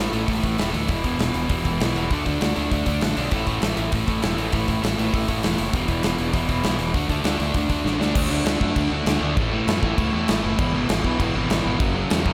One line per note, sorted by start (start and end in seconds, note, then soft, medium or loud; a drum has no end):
0.00 0.12 A2 medium
0.00 0.12 E3 medium
0.00 0.11 A3 medium
0.12 0.25 A1 medium
0.12 0.26 A2 medium
0.12 0.27 E3 medium
0.12 0.27 A3 loud
0.12 open hi-hat medium
0.27 0.40 A1 medium
0.27 0.42 A2 loud
0.27 0.42 E3 loud
0.27 0.41 A3 loud
0.27 kick loud
0.27 open hi-hat medium
0.42 0.56 A1 medium
0.42 0.57 A2 medium
0.42 0.58 E3 medium
0.42 0.58 A3 medium
0.42 kick medium
0.42 open hi-hat medium
0.58 0.71 E1 medium
0.58 0.73 A2 medium
0.58 0.72 E3 medium
0.58 0.71 A3 loud
0.58 snare loud
0.58 open hi-hat medium
0.73 0.86 D2 medium
0.73 0.88 A2 medium
0.73 0.87 E3 medium
0.73 0.88 A3 medium
0.73 open hi-hat medium
0.88 1.01 E1 medium
0.88 1.04 E2 medium
0.88 1.03 B2 medium
0.88 1.03 E3 loud
0.88 kick loud
0.88 open hi-hat medium
1.04 1.17 E1 medium
1.04 1.18 E2 medium
1.04 1.18 B2 medium
1.04 1.19 E3 medium
1.04 kick medium
1.04 open hi-hat medium
1.19 1.31 E1 medium
1.19 1.34 E2 medium
1.19 1.34 B2 medium
1.19 1.33 E3 medium
1.19 snare loud
1.19 open hi-hat medium
1.34 1.47 E1 medium
1.34 1.48 E2 medium
1.34 1.48 B2 medium
1.34 1.49 E3 medium
1.34 open hi-hat medium
1.49 1.62 E1 medium
1.49 1.65 E2 medium
1.49 1.64 B2 medium
1.49 1.64 E3 loud
1.49 kick loud
1.49 open hi-hat medium
1.65 1.77 E1 medium
1.65 1.79 E2 medium
1.65 1.79 B2 medium
1.65 1.80 E3 medium
1.65 kick medium
1.65 open hi-hat medium
1.80 1.93 B1 medium
1.80 1.95 E2 medium
1.80 1.95 B2 medium
1.80 1.94 E3 loud
1.80 snare loud
1.80 open hi-hat medium
1.95 2.08 E1 medium
1.95 2.10 E2 medium
1.95 2.10 B2 medium
1.95 2.10 E3 medium
1.95 open hi-hat medium
2.11 2.23 D2 medium
2.11 2.25 D3 medium
2.11 2.26 A3 medium
2.11 2.24 D4 loud
2.11 kick loud
2.11 open hi-hat medium
2.25 2.39 D2 medium
2.25 2.40 D3 medium
2.25 2.41 A3 medium
2.25 2.41 D4 medium
2.25 kick medium
2.25 open hi-hat medium
2.41 2.54 D2 medium
2.41 2.56 D3 medium
2.41 2.56 A3 medium
2.41 2.55 D4 medium
2.41 snare loud
2.41 open hi-hat medium
2.56 2.69 D2 medium
2.56 2.70 D3 medium
2.56 2.71 A3 medium
2.56 2.71 D4 loud
2.56 open hi-hat medium
2.71 2.84 D2 medium
2.71 2.86 D3 medium
2.71 2.86 A3 loud
2.71 2.85 D4 loud
2.71 kick loud
2.71 open hi-hat medium
2.86 2.99 D2 medium
2.86 3.01 D3 medium
2.86 3.02 A3 medium
2.86 3.02 D4 medium
2.86 kick medium
2.86 open hi-hat medium
3.01 3.14 A1 medium
3.01 3.17 D3 medium
3.01 3.17 A3 medium
3.01 3.16 D4 loud
3.01 snare loud
3.01 open hi-hat medium
3.17 3.29 B1 medium
3.17 3.31 D3 medium
3.17 3.32 A3 medium
3.17 3.31 D4 loud
3.17 open hi-hat medium
3.31 3.44 A1 medium
3.31 3.48 A2 medium
3.31 3.47 E3 medium
3.31 3.47 A3 loud
3.31 kick loud
3.31 open hi-hat medium
3.47 3.60 A1 medium
3.47 3.61 A2 medium
3.47 3.62 E3 medium
3.47 3.62 A3 loud
3.47 kick medium
3.47 open hi-hat medium
3.62 3.75 A1 medium
3.62 3.76 A2 medium
3.62 3.77 E3 medium
3.62 3.75 A3 medium
3.62 snare loud
3.62 open hi-hat medium
3.76 3.90 A1 medium
3.76 3.91 A2 medium
3.76 3.92 E3 medium
3.76 3.92 A3 loud
3.76 open hi-hat medium
3.92 4.05 A1 medium
3.92 4.08 A2 medium
3.92 4.08 E3 medium
3.92 4.06 A3 loud
3.92 kick loud
3.92 open hi-hat medium
4.07 4.20 A1 medium
4.07 4.21 A2 medium
4.07 4.23 E3 medium
4.07 4.22 A3 medium
4.07 kick medium
4.07 open hi-hat medium
4.22 4.35 E1 medium
4.22 4.38 A2 loud
4.22 4.38 E3 loud
4.22 4.36 A3 loud
4.22 snare loud
4.22 open hi-hat medium
4.38 4.50 A1 medium
4.38 4.52 A2 medium
4.38 4.53 E3 medium
4.38 4.53 A3 loud
4.38 open hi-hat medium
4.52 4.66 A1 medium
4.52 4.68 A2 medium
4.52 4.69 E3 medium
4.52 4.67 A3 loud
4.52 kick loud
4.52 open hi-hat medium
4.68 4.81 A1 medium
4.68 4.81 A2 medium
4.68 4.83 E3 medium
4.68 4.83 A3 medium
4.68 kick medium
4.68 open hi-hat medium
4.83 4.96 A1 medium
4.83 4.98 A2 medium
4.83 4.97 E3 medium
4.83 4.97 A3 medium
4.83 snare loud
4.83 open hi-hat medium
4.98 5.11 A1 medium
4.98 5.12 A2 medium
4.98 5.13 E3 medium
4.98 5.14 A3 loud
4.98 open hi-hat medium
5.13 5.26 A1 medium
5.13 5.28 A2 loud
5.13 5.28 E3 medium
5.13 5.27 A3 loud
5.13 kick loud
5.13 open hi-hat medium
5.28 5.41 A1 medium
5.28 5.43 A2 medium
5.28 5.43 E3 medium
5.28 5.44 A3 loud
5.28 kick medium
5.28 open hi-hat medium
5.43 5.56 E1 medium
5.43 5.58 A2 medium
5.43 5.58 E3 loud
5.43 5.57 A3 loud
5.43 snare loud
5.43 open hi-hat medium
5.58 5.71 F#1 medium
5.58 5.74 A2 medium
5.58 5.73 E3 medium
5.58 5.73 A3 loud
5.58 open hi-hat medium
5.73 5.86 E1 medium
5.73 5.88 E2 loud
5.73 5.88 B2 loud
5.73 5.87 E3 medium
5.73 kick loud
5.73 open hi-hat medium
5.88 6.01 E1 medium
5.88 6.02 E2 medium
5.88 6.03 B2 medium
5.88 6.03 E3 medium
5.88 kick medium
5.88 open hi-hat medium
6.03 6.17 E1 medium
6.03 6.18 E2 medium
6.03 6.18 B2 medium
6.03 6.17 E3 medium
6.03 snare loud
6.03 open hi-hat medium
6.18 6.32 E1 medium
6.18 6.32 E2 medium
6.18 6.32 B2 loud
6.18 6.33 E3 loud
6.18 open hi-hat medium
6.33 6.47 E1 medium
6.33 6.48 E2 medium
6.33 6.48 B2 medium
6.33 6.48 E3 loud
6.33 kick loud
6.33 open hi-hat medium
6.49 6.62 E1 medium
6.49 6.63 E2 medium
6.49 6.63 B2 medium
6.49 6.64 E3 medium
6.49 kick medium
6.49 open hi-hat medium
6.64 6.77 B1 medium
6.64 6.79 E2 loud
6.64 6.79 B2 loud
6.64 6.78 E3 loud
6.64 snare loud
6.64 open hi-hat medium
6.79 6.92 E1 medium
6.79 6.95 E2 medium
6.79 6.93 B2 medium
6.79 6.94 E3 loud
6.79 open hi-hat medium
6.94 7.07 D2 medium
6.94 7.09 D3 medium
6.94 7.09 A3 loud
6.94 7.08 D4 loud
6.94 kick loud
6.94 open hi-hat medium
7.09 7.22 D2 medium
7.09 7.23 D3 medium
7.09 7.24 A3 medium
7.09 7.25 D4 medium
7.09 kick medium
7.09 open hi-hat medium
7.24 7.37 D2 medium
7.24 7.40 D3 medium
7.24 7.39 A3 medium
7.24 7.38 D4 loud
7.24 snare loud
7.24 open hi-hat medium
7.39 7.52 D2 medium
7.39 7.55 D3 medium
7.39 7.55 A3 medium
7.39 7.55 D4 loud
7.39 open hi-hat medium
7.54 7.67 D2 medium
7.54 7.71 D3 medium
7.54 7.70 A3 loud
7.54 7.69 D4 loud
7.54 kick loud
7.54 open hi-hat medium
7.70 7.82 D2 medium
7.70 7.84 D3 medium
7.70 7.85 A3 medium
7.70 7.85 D4 medium
7.70 kick medium
7.70 open hi-hat medium
7.85 7.98 A1 loud
7.85 8.00 D3 medium
7.85 8.00 A3 loud
7.85 7.99 D4 loud
7.85 snare medium
7.99 8.12 D2 medium
7.99 8.14 D3 medium
7.99 8.15 A3 medium
7.99 8.15 D4 loud
7.99 snare medium
8.15 8.27 D2 medium
8.15 8.30 D3 medium
8.15 8.30 A3 loud
8.15 8.29 D4 loud
8.15 kick loud
8.15 crash loud
8.15 crash medium
8.30 8.42 D2 medium
8.30 8.44 D3 medium
8.30 8.46 A3 medium
8.30 8.46 D4 loud
8.45 8.57 D2 medium
8.45 8.61 D3 medium
8.45 8.61 A3 medium
8.45 8.60 D4 loud
8.45 snare loud
8.45 crash medium
8.61 8.72 F#2 loud
8.61 8.75 D3 medium
8.61 8.76 A3 medium
8.61 8.76 D4 loud
8.61 kick loud
8.76 8.88 D2 medium
8.76 8.92 D3 medium
8.76 8.91 A3 loud
8.76 8.90 D4 loud
8.76 kick loud
8.76 crash medium
8.91 9.02 D2 medium
8.91 9.06 D3 medium
8.91 9.07 A3 medium
8.91 9.07 D4 medium
9.06 9.17 D2 medium
9.06 9.22 D3 loud
9.06 9.21 A3 loud
9.06 9.21 D4 loud
9.06 snare loud
9.06 crash medium
9.20 9.38 D2 medium
9.20 9.37 D3 medium
9.20 9.37 A3 loud
9.20 9.36 D4 loud
9.37 9.59 A1 medium
9.37 9.52 A2 medium
9.37 9.52 E3 loud
9.37 9.51 A3 loud
9.37 kick loud
9.37 crash medium
9.53 9.66 A2 medium
9.53 9.68 E3 medium
9.53 9.67 A3 medium
9.67 9.78 F#2 medium
9.67 9.83 A2 medium
9.67 9.82 E3 loud
9.67 9.82 A3 loud
9.67 snare loud
9.67 crash medium
9.83 9.94 A1 medium
9.83 9.97 A2 medium
9.83 9.97 E3 loud
9.83 9.98 A3 loud
9.83 kick medium
9.98 10.09 C#2 medium
9.98 10.14 A2 loud
9.98 10.13 E3 loud
9.98 10.12 A3 loud
9.98 kick loud
9.98 crash medium
10.13 10.25 E2 medium
10.13 10.27 A2 medium
10.13 10.28 E3 medium
10.13 10.29 A3 medium
10.28 10.40 A1 medium
10.28 10.43 A2 loud
10.28 10.43 E3 loud
10.28 10.42 A3 loud
10.28 snare loud
10.28 crash medium
10.43 10.55 F#1 loud
10.43 10.58 A2 medium
10.43 10.58 E3 medium
10.43 10.58 A3 loud
10.59 10.70 G#1 loud
10.59 10.74 E2 medium
10.59 10.73 B2 loud
10.59 10.73 E3 loud
10.59 kick loud
10.59 crash medium
10.74 10.85 G#1 medium
10.74 10.88 E2 medium
10.74 10.89 B2 medium
10.74 10.89 E3 loud
10.89 11.00 G#1 medium
10.89 11.04 E2 medium
10.89 11.04 B2 loud
10.89 11.03 E3 medium
10.89 snare loud
10.89 crash medium
11.04 11.16 B1 medium
11.04 11.18 E2 medium
11.04 11.19 B2 loud
11.04 11.20 E3 loud
11.04 kick medium
11.20 11.31 G#1 medium
11.20 11.35 E2 loud
11.20 11.34 B2 loud
11.20 11.33 E3 loud
11.20 kick loud
11.20 crash medium
11.35 11.46 G#1 medium
11.35 11.48 E2 medium
11.35 11.49 B2 medium
11.35 11.49 E3 loud
11.49 11.61 G#1 loud
11.49 11.64 E2 loud
11.49 11.64 B2 loud
11.49 11.63 E3 loud
11.49 snare loud
11.49 crash medium
11.64 11.76 G#1 loud
11.64 11.78 E2 medium
11.64 11.79 B2 loud
11.64 11.79 E3 loud
11.79 12.02 F#1 medium
11.79 11.94 F#2 medium
11.79 11.94 C#3 loud
11.79 11.94 F#3 loud
11.79 kick loud
11.79 crash medium
11.95 12.08 F#2 medium
11.95 12.09 C#3 medium
11.95 12.10 F#3 loud
12.09 12.22 E2 medium
12.09 12.24 F#2 loud
12.09 12.24 C#3 loud
12.09 12.23 F#3 loud
12.09 snare loud
12.09 crash medium
12.24 12.33 F#1 medium
12.24 12.33 F#2 medium
12.24 12.33 C#3 medium
12.24 12.33 F#3 loud
12.24 kick loud